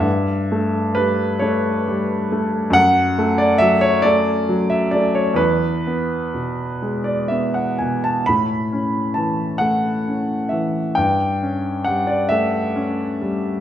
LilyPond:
<<
  \new Staff \with { instrumentName = "Grand piano" } { \time 6/8 \key a \major \tempo 4. = 44 e''4 b'8 cis''8 r4 | fis''8. d''16 e''16 cis''16 d''8. e''16 d''16 cis''16 | b'4. r16 d''16 e''16 fis''16 gis''16 a''16 | b''4 a''8 fis''4 e''8 |
g''4 fis''16 d''16 e''4. | }
  \new Staff \with { instrumentName = "Grand piano" } { \clef bass \time 6/8 \key a \major g,8 a8 g8 a8 g8 a8 | fis,8 a8 fis8 a8 fis8 a8 | e,8 b8 b,8 gis8 b8 b,8 | a,8 cis'8 e8 a8 cis'8 e8 |
g,8 cis'8 g8 a8 cis'8 g8 | }
>>